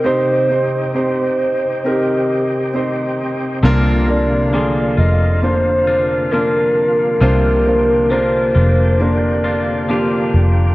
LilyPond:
<<
  \new Staff \with { instrumentName = "Soft synth lead" } { \time 4/4 \key bes \mixolydian \tempo 4 = 67 c''4 c''4 g'4. r8 | r8 d''4 ees''8 c''4 bes'4 | bes'4 c''4 d''4. r8 | }
  \new Staff \with { instrumentName = "Grand piano" } { \time 4/4 \key bes \mixolydian <c' ees' g' c''>8 <c' ees' g' c''>8 <c' ees' g' c''>4 <c' ees' g' bes'>4 <c' ees' g' c''>4 | <bes d' f' bes'>8 <bes d' f' bes'>8 <d bes f' aes'>4 <bes d' f' c''>4 <bes d' f' bes'>4 | <bes d' f' c''>8 <bes d' f' c''>8 <bes d' f' bes'>4 <bes d' f' bes'>4 <bes d' f' g'>4 | }
  \new Staff \with { instrumentName = "Grand piano" } { \clef bass \time 4/4 \key bes \mixolydian c4. r2 r8 | c4. r2 r8 | c4. r2 r8 | }
  \new Staff \with { instrumentName = "Clean electric guitar" } { \time 4/4 \key bes \mixolydian r1 | <c f bes d' f'>4 <f bes d' f'>8 <bes f'>4 <bes d' f'>8 <f bes d' f'>4 | <c f bes d' f'>4 <f bes d' f'>8 <bes d' f'>4 <bes d' f'>8 <f bes d' f'>4 | }
  \new Staff \with { instrumentName = "Tonewheel organ" } { \time 4/4 \key bes \mixolydian g'1 | f'1 | g'1 | }
  \new Staff \with { instrumentName = "Tonewheel organ" } { \time 4/4 \key bes \mixolydian << { <c' ees'>1 | <d bes>1~ | <d bes>1 | } \\ { c1~ | c1~ | c1 | } >> }
  \new Staff \with { instrumentName = "Fingered electric bass" } { \clef bass \time 4/4 \key bes \mixolydian r1 | c,4. f,,2~ f,,8 | c,4. f,,2 f,,8 | }
>>